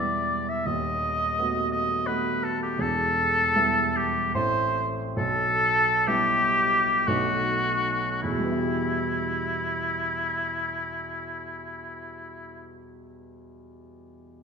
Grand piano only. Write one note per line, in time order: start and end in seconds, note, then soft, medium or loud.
0.00 0.69 E1 medium
0.00 0.69 E2 medium
0.00 0.70 G3 soft
0.00 0.69 B3 soft
0.00 0.69 E4 soft
0.66 1.35 D#1 medium
0.66 1.36 D#2 medium
1.38 2.04 A3 soft
1.38 2.04 B3 soft
1.38 2.05 F#4 soft
2.08 2.76 A3 soft
2.08 2.76 B3 soft
2.08 2.76 F#4 medium
2.78 3.52 E1 medium
2.78 3.53 E2 medium
3.55 4.31 G3 medium
3.55 4.31 B3 soft
3.55 4.31 E4 medium
4.34 5.15 A1 medium
4.34 5.14 A3 medium
4.34 5.13 C4 medium
4.34 5.14 E4 medium
5.16 6.04 B1 medium
6.07 7.04 G3 medium
6.07 7.04 B3 medium
6.07 7.04 E4 medium
7.07 8.20 B1 medium
7.07 8.20 A3 medium
7.07 8.20 B3 medium
7.07 8.20 D#4 medium
8.23 12.70 E2 medium
8.30 12.77 B2 medium
8.38 12.85 G3 soft
8.44 12.91 B3 medium
8.51 12.98 E4 soft
8.58 13.05 G4 soft